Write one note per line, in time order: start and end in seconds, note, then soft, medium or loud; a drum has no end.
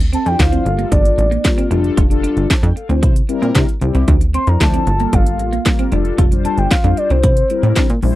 0.00 0.17 D2 loud
0.00 closed hi-hat soft
0.13 0.24 C4 medium
0.13 0.28 A5 loud
0.13 closed hi-hat medium
0.26 0.36 F2 medium
0.26 0.63 F3 medium
0.26 0.64 D4 medium
0.26 0.64 E4 medium
0.26 0.64 C5 medium
0.26 0.41 G5 loud
0.26 closed hi-hat medium
0.39 0.59 D2 loud
0.39 0.92 F5 loud
0.39 kick loud
0.39 snare loud
0.39 clap medium
0.39 closed hi-hat medium
0.52 0.63 C4 medium
0.52 closed hi-hat medium
0.65 0.85 G1 loud
0.65 1.29 G3 medium
0.65 1.29 A#3 medium
0.65 1.29 F4 medium
0.65 1.29 A4 medium
0.65 muted clean electric guitar stroke soft
0.65 closed hi-hat medium
0.79 0.89 A#3 medium
0.79 closed hi-hat soft
0.92 1.12 G1 loud
0.92 1.02 D4 medium
0.92 1.67 D5 loud
0.92 kick loud
0.92 closed hi-hat loud
1.05 closed hi-hat medium
1.18 1.38 A1 loud
1.18 muted clean electric guitar stroke soft
1.18 closed hi-hat medium
1.31 1.42 A#3 medium
1.31 closed hi-hat soft
1.44 1.69 G3 medium
1.44 1.71 A#3 medium
1.44 1.70 F4 medium
1.44 1.71 A#4 medium
1.44 kick loud
1.44 snare loud
1.44 clap medium
1.44 closed hi-hat loud
1.58 1.69 C4 medium
1.58 closed hi-hat soft
1.71 1.91 F1 loud
1.71 2.02 G3 loud
1.71 2.02 D4 medium
1.71 1.82 D4 medium
1.71 2.03 F4 medium
1.71 2.03 A4 loud
1.71 closed hi-hat medium
1.84 closed hi-hat soft
1.97 2.27 F1 loud
1.97 2.08 F4 medium
1.97 kick loud
1.97 closed hi-hat medium
2.10 2.48 G3 loud
2.10 2.48 D4 medium
2.10 2.48 F4 loud
2.10 2.48 A4 loud
2.10 muted clean electric guitar stroke soft
2.10 closed hi-hat soft
2.23 2.34 D4 medium
2.23 closed hi-hat medium
2.37 2.47 G1 medium
2.37 closed hi-hat medium
2.50 2.55 F2 soft
2.50 kick loud
2.50 snare loud
2.50 clap medium
2.50 closed hi-hat medium
2.63 2.73 F2 loud
2.63 2.74 D4 medium
2.63 2.75 G5 medium
2.63 closed hi-hat medium
2.76 2.89 A4 medium
2.76 2.89 F5 medium
2.76 muted clean electric guitar stroke soft
2.76 closed hi-hat medium
2.89 3.04 D2 medium
2.89 3.00 C4 medium
2.89 3.14 E4 medium
2.89 3.14 C5 medium
2.89 closed hi-hat soft
3.03 3.23 C3 loud
3.03 3.13 E4 medium
3.03 kick loud
3.03 closed hi-hat loud
3.16 closed hi-hat medium
3.28 3.66 G3 loud
3.28 3.66 C4 loud
3.28 3.66 E4 medium
3.28 3.66 A#4 loud
3.28 muted clean electric guitar stroke soft
3.28 closed hi-hat medium
3.42 3.52 A#2 medium
3.42 3.53 C4 medium
3.42 closed hi-hat medium
3.55 3.65 C3 medium
3.55 3.66 D4 medium
3.55 kick loud
3.55 snare loud
3.55 clap medium
3.55 closed hi-hat medium
3.69 closed hi-hat soft
3.81 3.91 C2 loud
3.81 4.07 G3 loud
3.81 4.08 C4 medium
3.81 4.08 E4 medium
3.81 4.08 G4 loud
3.81 muted clean electric guitar stroke soft
3.81 closed hi-hat medium
3.95 4.05 C2 medium
3.95 4.05 C4 medium
3.95 closed hi-hat medium
4.08 4.38 D2 loud
4.08 4.19 D4 medium
4.08 kick loud
4.08 closed hi-hat medium
4.21 muted clean electric guitar stroke soft
4.21 closed hi-hat medium
4.34 4.45 C4 medium
4.34 4.50 C6 loud
4.34 closed hi-hat medium
4.47 4.57 F2 medium
4.47 4.85 F3 medium
4.47 4.85 D4 medium
4.47 4.85 E4 medium
4.47 4.85 C5 medium
4.47 4.61 A#5 medium
4.47 closed hi-hat medium
4.61 4.80 D2 medium
4.61 5.16 A5 loud
4.61 kick loud
4.61 snare loud
4.61 clap medium
4.61 closed hi-hat medium
4.74 4.84 C4 medium
4.74 closed hi-hat medium
4.86 5.07 G1 medium
4.86 5.50 G3 medium
4.86 5.50 A#3 medium
4.86 5.50 F4 medium
4.86 4.93 G4 medium
4.86 muted clean electric guitar stroke soft
4.86 closed hi-hat medium
4.93 5.53 A4 medium
5.00 5.11 A#3 medium
5.00 closed hi-hat soft
5.13 5.41 G1 loud
5.13 5.24 D4 medium
5.13 5.93 F5 medium
5.13 kick loud
5.13 closed hi-hat loud
5.26 closed hi-hat medium
5.39 5.59 A1 loud
5.39 muted clean electric guitar stroke soft
5.39 closed hi-hat medium
5.53 5.63 A#3 medium
5.53 closed hi-hat medium
5.65 5.90 G3 medium
5.65 5.92 A#3 medium
5.65 5.91 F4 medium
5.65 5.92 A#4 medium
5.65 muted clean electric guitar stroke soft
5.65 kick loud
5.65 snare loud
5.65 clap medium
5.65 closed hi-hat medium
5.79 5.90 C4 medium
5.79 closed hi-hat soft
5.91 6.12 F1 loud
5.91 6.23 G3 medium
5.91 6.23 D4 medium
5.91 6.03 D4 medium
5.91 6.24 F4 medium
5.91 6.24 A4 loud
5.91 closed hi-hat medium
6.05 closed hi-hat medium
6.18 6.48 F1 medium
6.18 6.29 F4 medium
6.18 kick loud
6.18 closed hi-hat medium
6.31 6.69 G3 medium
6.31 6.69 D4 medium
6.31 6.69 F4 medium
6.31 6.69 C5 loud
6.31 muted clean electric guitar stroke soft
6.31 closed hi-hat soft
6.45 6.55 D4 medium
6.45 6.59 A5 loud
6.45 closed hi-hat medium
6.58 6.68 G1 medium
6.58 6.71 G5 loud
6.58 closed hi-hat medium
6.71 6.76 F2 soft
6.71 6.99 F5 loud
6.71 kick loud
6.71 snare loud
6.71 clap medium
6.71 closed hi-hat medium
6.83 6.94 F2 loud
6.83 7.23 G3 medium
6.83 7.23 D4 medium
6.83 6.95 D4 medium
6.83 7.24 F4 medium
6.83 7.24 C5 medium
6.83 closed hi-hat medium
6.97 7.12 D5 medium
6.97 muted clean electric guitar stroke soft
6.97 closed hi-hat medium
7.10 7.25 C2 medium
7.10 7.21 C4 medium
7.10 7.90 C5 medium
7.10 closed hi-hat soft
7.23 7.43 C3 loud
7.23 7.34 E4 medium
7.23 kick loud
7.23 closed hi-hat loud
7.37 closed hi-hat medium
7.49 7.87 G3 medium
7.49 7.87 C4 medium
7.49 7.88 E4 medium
7.49 7.88 A#4 medium
7.49 muted clean electric guitar stroke soft
7.49 closed hi-hat medium
7.63 7.73 A2 medium
7.63 7.74 C4 medium
7.63 closed hi-hat soft
7.76 7.87 D4 medium
7.76 kick loud
7.76 snare loud
7.76 clap medium
7.76 closed hi-hat loud
7.90 8.00 A#2 medium
7.90 closed hi-hat soft
8.02 8.13 A#1 medium
8.02 8.15 G3 loud
8.02 8.15 C4 medium
8.02 8.15 E4 loud
8.02 8.15 C5 loud
8.02 muted clean electric guitar stroke soft
8.02 open hi-hat medium